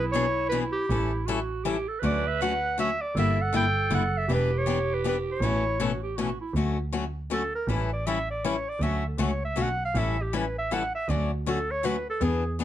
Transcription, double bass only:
Already playing: B1
0.89 A1
2.02 D2
3.15 G1
3.54 G1
3.91 F#1
4.29 E1
5.41 A1
6.54 D2
7.67 A1
8.79 D2
9.18 C#2
9.56 B1
9.94 A1
11.08 D2
12.21 E2

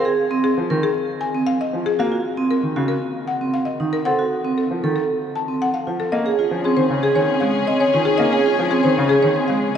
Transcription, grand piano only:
0.58 F3
0.71 D#3
1.73 F3
1.99 A#3
2.63 D#3
2.76 C#3
3.80 D#3
4.06 C4
4.71 F3
4.84 D#3
5.87 F3
6.13 A#3
6.51 F3
6.77 D#3
6.90 C#3
7.16 D#3
7.42 G#3
7.94 D#3
8.20 A#3
8.59 F3
8.85 D#3
8.98 C#3
9.24 D#3
9.49 G#3

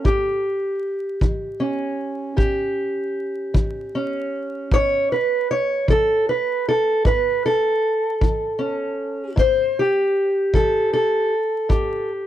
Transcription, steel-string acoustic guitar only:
Already playing: A4
0.04 A2 G4
1.22 E3
1.60 C#4
2.36 A2 G4
3.54 E3
3.95 C#4
4.72 A2 C#5
5.12 B4
5.51 C#5
5.88 E3 A4
6.29 B4
6.69 A4
7.05 A2 B4
7.46 A4
8.21 E3
8.59 C#4
9.36 A2 C5
9.79 G4
10.53 E3 A4
10.93 A4
11.69 A2 G4

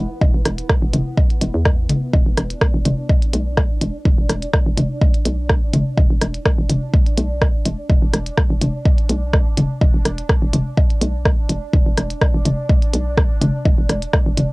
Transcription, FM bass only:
0.21 E1
0.34 E1
0.46 E1
0.82 E1
0.93 E1
1.41 E1
1.54 E2
1.89 E1
2.13 E1
2.26 E1
2.37 E1
2.74 E1
2.85 E1
3.34 B1
3.70 D1
3.81 E1
4.05 E1
4.18 E1
4.29 E1
4.66 E1
4.77 E1
5.25 B1
5.62 D1
5.74 E1
5.97 E1
6.10 E1
6.21 E1
6.58 E1
6.70 E1
7.17 B1
7.54 D1
7.66 E1
7.89 E1
8.02 E1
8.13 E1
8.50 E1
8.61 E1
9.09 B1
9.46 D1
9.57 E1
9.81 E1
9.94 E1
10.05 E1
10.42 E1
10.53 E1
11.01 B1
11.38 D1
11.49 E1
11.73 E1
11.86 E1
11.98 E1
12.34 E1
12.45 E1
12.94 B1
13.30 D1
13.41 E1
13.65 E1
13.78 E1
13.89 E1
14.26 E1
14.37 E1

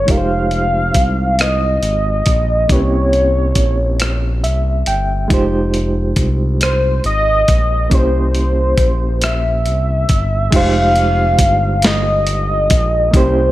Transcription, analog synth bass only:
0.08 F1
0.95 C2
1.83 G#1
2.27 A#1
2.70 C2
3.56 A#1
4.43 C2
4.87 G1
5.30 F1
6.17 C2
7.05 G#1
7.49 A#1
7.92 C2
8.78 A#1
9.66 C2
10.10 G1
10.53 F1
11.39 G1
12.71 A#1
13.14 C2

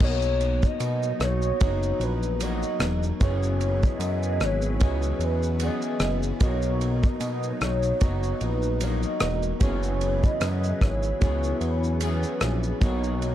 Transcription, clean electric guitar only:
0.00 B2 F#3 A#3 D#4
0.04 F#4
1.60 F#3 D#4 F#4
2.42 F#3 A#3 D#4 F#4
3.20 F#2 C#3 E3 B3 C#4
3.24 G#4
4.81 E3 B3 C#4 G#4
5.61 E3 B3 C#4 G#4
6.40 B2 F#3 A#3 D#4 F#4
8.01 F#3 D#4 F#4
8.81 F#3 A#3 D#4 F#4
9.60 F#2 C#3 E3 B3 C#4
9.64 G#4
11.21 E3 B3 C#4 G#4
12.01 E3 B3 C#4 G#4
12.82 B2 F#3 A#3 D#4 F#4

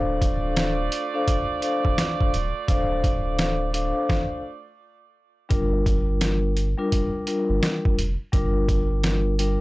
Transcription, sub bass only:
Already playing: D1
1.85 D1
2.33 D1
2.68 D1
5.51 G1
7.49 G1
7.98 F1
8.33 G1

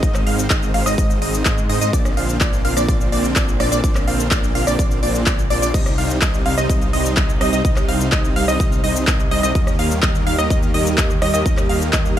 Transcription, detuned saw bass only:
0.03 G#1
0.27 G#1
0.50 G#1
0.74 G#1
0.86 G#1
0.98 G#1
1.22 G#1
1.46 G#2
1.69 G#2
1.81 G#2
1.93 A#1
2.17 A#1
2.41 A#1
2.65 A#1
2.77 A#1
2.88 A#1
3.12 A#1
3.36 A#1
3.60 A#1
3.72 A#1
3.84 A#1
4.08 A#1
4.31 A#1
4.55 A#1
4.67 A#1
4.79 A#1
5.03 A#1
5.27 A#1
5.50 A#1
5.62 A#1
5.74 C2
5.98 C2
6.22 C2
6.46 C2
6.58 C2
6.69 C2
6.93 C2
7.17 C2
7.41 C2
7.53 C2
7.65 C2
7.89 C2
8.12 C2
8.36 C2
8.48 C2
8.60 C2
8.84 C2
9.08 C2
9.31 C2
9.43 C2
9.55 D#2
9.79 D#2
10.03 D#2
10.27 D#2
10.38 D#2
10.50 D#2
10.74 D#2
10.98 D#2
11.22 D#2
11.34 D#2
11.46 D#2
11.69 D#2
11.93 D#2

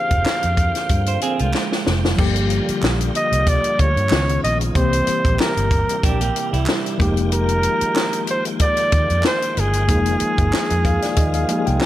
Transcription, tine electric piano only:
Already playing: D4 G4 G#4 C5
2.16 D3 F3 G3 A#3 G4
4.11 D#3 G#3 B3 C#4 F4
4.73 D3 G3 A#3 C4 G4
4.80 E3
6.98 F3 G#3 A#3 D#4 G4
9.87 F3 G#3 A#3 D#4 G#4
10.85 F5
11.03 D5
11.18 D#5
11.35 F5
11.48 F3 G#3 A#3 D#4 G4 G#5
11.57 G#4
11.66 G5
11.82 G#5

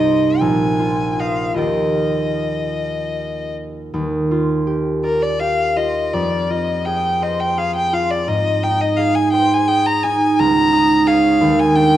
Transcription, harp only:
Already playing: C2 D#4
0.00 C5 D5
0.41 A#1
0.79 F4
1.19 C5 D#5
1.54 D#2 F4 G4 A#4 D5
3.94 D#2
4.31 F4
4.67 G4
5.04 D5
5.41 G4
5.77 F4
6.13 F2
6.50 F4
6.87 G#4
7.22 C5
7.57 G#4
7.93 F4
8.27 G#2
8.63 D#4
8.99 G#4
9.33 C5
9.68 G#4
10.04 D#4
10.39 C#2
10.73 D#4
11.07 G#4 C#5
11.41 D#2
11.75 D4

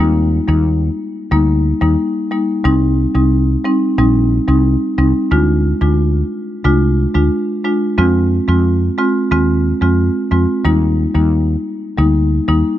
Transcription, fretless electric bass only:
0.00 D#2
0.48 D#2
1.32 D2
1.82 D#2
2.65 C2
3.15 C2
3.98 A#1
4.48 C2
4.98 C2
5.32 D2
5.81 D2
6.65 C2
7.15 D2
7.98 F2
8.48 F2
9.32 D#2
9.82 F2
10.32 F2
10.65 D#2
11.15 D#2
11.98 D2
12.48 D#2

